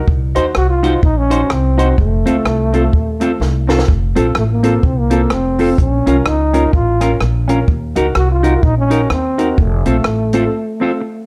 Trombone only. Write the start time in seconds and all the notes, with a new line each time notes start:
0.56 F#4
0.70 F4
1.04 D#4
1.18 C#4
1.52 C4
1.99 A3
4.39 A3
4.52 A#3
4.85 C4
4.99 A#3
5.32 C4
5.80 C#4
6.27 D#4
6.74 F4
8.17 F#4
8.32 F4
8.64 D#4
8.78 C#4
9.12 C4
9.60 A3